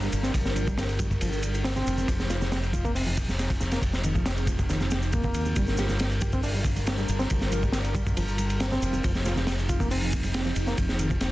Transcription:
Already playing: G3 D4 F4 A#4
0.02 G3, snare, shaker
0.13 G1, ride, shaker
0.23 C4, snare, shaker
0.34 G1, kick, ride, shaker
0.46 snare, shaker
0.55 F3, ride, high conga, shaker
0.67 G3, kick, low conga, shaker
0.78 snare, ride, shaker
0.89 ride, shaker
0.99 G3, kick, ride, high conga, shaker
1.11 kick, shaker
1.21 G1 F3, ride, shaker
1.33 shaker
1.43 ride, high conga, shaker
1.54 ride, shaker
1.64 C4, snare, ride, shaker
1.76 C4, snare, low conga, shaker
1.87 F1, ride, shaker
1.97 high conga, low conga, shaker
2.08 F1 F3 C4 D#4 G#4, kick, ride, shaker
2.20 snare, shaker
2.30 F4, snare, ride, high conga, shaker
2.41 snare, low conga, shaker
2.52 snare, ride, shaker
2.63 shaker
2.73 F4, kick, ride, high conga, shaker
2.85 A#3, kick, shaker
2.95 C4, open hi-hat, shaker
3.06 F3, shaker
3.17 kick, ride, shaker
3.28 snare, high conga, shaker
3.39 snare, ride, shaker
3.50 F3, kick, ride, shaker
3.60 F1, snare, shaker
3.71 A#3, snare, ride, shaker
3.82 F1, kick, ride, shaker
3.93 snare, shaker
4.04 D#3, ride, high conga, shaker
4.15 F3, kick, low conga, shaker
4.26 snare, ride, shaker
4.37 ride, shaker
4.46 F3, kick, ride, high conga, shaker
4.59 kick, shaker
4.69 F1 D#3, snare, ride, shaker
4.81 snare, shaker
4.91 snare, ride, high conga, shaker
5.02 shaker
5.13 A#3, kick, ride, shaker
5.23 A#3, kick, low conga, shaker
5.34 D#2, ride, shaker
5.45 high conga, low conga, shaker
5.56 G1 G3 D4 F4 A#4, kick, ride, shaker
5.67 snare, shaker
5.77 G4, snare, ride, high conga, shaker
5.89 snare, low conga, shaker
5.99 snare, ride, shaker
6.11 shaker
6.21 G4, kick, ride, high conga, shaker
6.32 C4, kick, shaker
6.43 D4, open hi-hat, shaker
6.54 G3, shaker
6.64 kick, ride, shaker
6.76 ride, high conga, shaker
6.87 snare, ride, shaker
6.98 G3, snare, shaker
7.08 G1, ride, shaker
7.19 C4, snare, shaker
7.30 G1, kick, ride, shaker
7.41 snare, shaker
7.52 F3, ride, high conga, shaker
7.62 G3, kick, low conga, shaker
7.72 snare, ride, shaker
7.84 ride, shaker
7.95 G3, kick, ride, high conga, shaker
8.06 kick, shaker
8.17 G1 F3, ride, shaker
8.28 shaker
8.38 ride, high conga, shaker
8.50 ride, shaker
8.60 C4, snare, ride, shaker
8.72 C4, snare, low conga, shaker
8.82 F1, ride, shaker
8.93 high conga, low conga, shaker
9.03 F1 F3 C4 D#4 G#4, kick, ride, shaker
9.15 snare, shaker
9.25 F4, snare, ride, high conga, shaker
9.36 snare, low conga, shaker
9.47 snare, ride, shaker
9.59 shaker
9.69 F4, kick, ride, high conga, shaker
9.80 A#3, kick, shaker
9.91 C4, open hi-hat, shaker
10.02 F3, shaker
10.13 kick, ride, shaker
10.23 ride, high conga, shaker
10.34 snare, ride, shaker
10.45 F3, snare, shaker
10.56 F1, ride, shaker
10.67 A#3, snare, shaker
10.78 F1, kick, ride, shaker
10.89 snare, shaker
10.99 D#3, ride, high conga, shaker
11.10 F3, kick, low conga, shaker
11.21 snare, ride, shaker

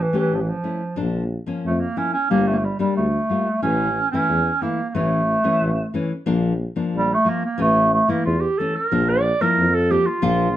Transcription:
0.02 E3
0.13 A3 C#4 G4
0.18 E3
0.31 A1 F3
0.41 E3
0.49 F3
0.63 A3 C#4 E4
0.96 A#1 F3 A#3 D4
1.46 F3 A#3 C#4
1.65 F2 A3
1.80 A#3
1.96 F3 A#3 C#4 E4
2.13 C#4
2.30 G1 G3 A#3 D4
2.48 A3
2.53 A3 A#3
2.65 G3
2.79 G3 A#3 D4
2.97 D2 A3
3.29 G3 A#3 F4
3.62 A1 E3 A3 C#4
4.12 E3 A3 C#4 E4
4.30 E2
4.62 E3 A3 A#3 E4
4.90 A#3
4.95 A1 E3 A3 C#4
5.44 E3 A3 C#4
5.62 A1
5.94 E3 A3 C#4
6.26 A#1 F3 A#3 D4
6.76 F3 A#3 D4
6.94 A#1 G3
7.14 A3
7.25 F3 A#3 F4
7.29 A#3
7.45 A#3
7.58 A1 E3 A3 C#4
7.62 A3
7.93 A3
8.08 E3 A3 A#3 E4
8.25 E2 F4
8.41 G4
8.58 E3 A3 C#4 A4
8.76 A#4
8.92 A#1 F3 A#3 D4
9.09 D5
9.41 F3 A#3 E4 A#4
9.57 F2
9.74 A4
9.90 F3 A#3 D4 G4
10.06 F4
10.22 A#1 F3 A#3 F4

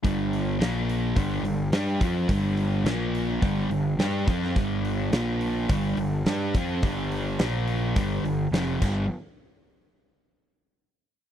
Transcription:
0.03 G1 G2 D3 G3, kick, open hi-hat
0.33 open hi-hat
0.59 A#1 A#2 F3 A#3, snare, open hi-hat
0.89 open hi-hat
1.16 G1 G2 D3 G3, kick, open hi-hat
1.43 G1 G2 D3, open hi-hat
1.71 G2 G3 D4 G4, snare, open hi-hat
2.00 F2 F3 C4 F4, kick, open hi-hat
2.28 G1 G2 D3 G3, kick, open hi-hat
2.57 open hi-hat
2.84 A#1 A#2 F3 A#3, snare, open hi-hat
3.15 open hi-hat
3.41 G1 G2 D3 G3, kick, open hi-hat
3.70 G1 G2 D3, open hi-hat
3.99 G2 G3 D4 G4, snare, open hi-hat
4.27 F2 F3 C4 F4, kick, open hi-hat
4.43 snare
4.55 G1 G2 D3 G3, kick, open hi-hat
4.85 open hi-hat
5.12 A#1 A#2 F3 A#3, snare, open hi-hat
5.41 open hi-hat
5.69 G1 G2 D3 G3, kick, open hi-hat
5.97 G1 G2 D3, open hi-hat
6.26 G2 G3 D4 G4, snare, open hi-hat
6.54 F2 F3 C4 F4, kick, open hi-hat
6.83 G1 G2 D3 G3, kick, open hi-hat
7.12 open hi-hat
7.39 A#1 A#2 F3 A#3, snare, open hi-hat
7.68 open hi-hat
7.95 G1 G2 D3 G3, kick, open hi-hat
8.23 G1 G2 D3, open hi-hat
8.51 F1 F2 C3 F3, snare, open hi-hat
8.82 G1 G2 D3 G3, kick, crash

